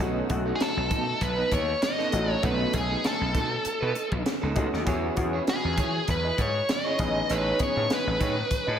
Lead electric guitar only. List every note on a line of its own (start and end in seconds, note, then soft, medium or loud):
0.55 0.61 G#4 medium
0.62 1.24 A4 medium
1.23 1.53 B4 medium
1.53 1.83 C#5 medium
1.83 2.31 D#5 medium
2.31 2.45 C#5 medium
2.45 2.72 B4 medium
2.75 3.05 G#4 medium
3.06 4.23 A4 medium
5.49 6.10 G#4 medium
6.10 6.40 B4 medium
6.41 6.70 C#5 medium
6.71 7.32 D#5 medium
7.32 7.59 B4 medium
7.63 7.90 C#5 medium
7.93 8.79 B4 medium